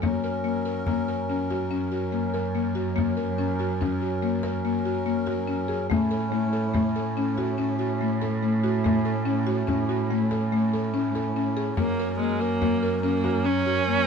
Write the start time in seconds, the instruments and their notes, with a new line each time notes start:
0.02 cello F#2, harmonium F#3 C#4 A#4, marimba A#3, frame drum
0.24 marimba A#4
0.44 marimba A#3
0.65 marimba A#4
0.86 marimba A#3, frame drum
1.08 marimba A#4
1.30 marimba C#4
1.50 marimba F#4, frame drum
1.71 marimba C#4, frame drum
1.92 marimba F#4
2.12 marimba A#3
2.34 marimba A#4, frame drum
2.55 marimba A#3
2.75 marimba F#4, frame drum
2.96 marimba A#3, frame drum
3.17 marimba A#4
3.38 marimba C#4
3.59 marimba F#4
3.81 marimba C#4, frame drum
4.01 marimba F#4
4.22 marimba A#3
4.43 marimba A#4, frame drum
4.65 marimba A#3, frame drum
4.85 marimba F#4
5.06 marimba A#3
5.27 marimba F#4, frame drum
5.47 marimba C#4
5.68 marimba G#4, frame drum
5.90 cello A2, marimba A3, harmonium A3 C#4 E4, frame drum
6.11 marimba A4
6.32 marimba A3
6.53 marimba A4
6.73 marimba A3, frame drum
6.96 marimba A4
7.17 marimba C#4
7.37 marimba F#4, frame drum
7.58 marimba C#4, frame drum
7.79 marimba F#4
8.01 marimba A3
8.22 marimba A4, frame drum
8.43 marimba A3
8.63 marimba F#4, frame drum
8.85 marimba A3, frame drum
9.05 marimba A4, frame drum
9.25 marimba C#4
9.47 marimba F#4
9.67 marimba C#4, frame drum
9.89 marimba F#4
10.11 marimba A3
10.31 marimba A4, frame drum
10.52 marimba A3
10.74 marimba A4, frame drum
10.94 marimba C#4
11.15 marimba A4, frame drum
11.36 marimba C#4
11.57 marimba G#4
11.76 cello F#2, harmonium F#3 A#4, viola A#3, marimba A#3, frame drum
12.00 marimba A#4
12.19 viola G#3, marimba A#3
12.40 viola A#3, marimba A#4
12.62 marimba A#3, frame drum
12.83 marimba A#4
13.03 viola A#3, marimba C#4
13.24 marimba F#4, frame drum
13.45 marimba C#4, viola C#4, frame drum
13.66 marimba F#4
13.88 marimba A#3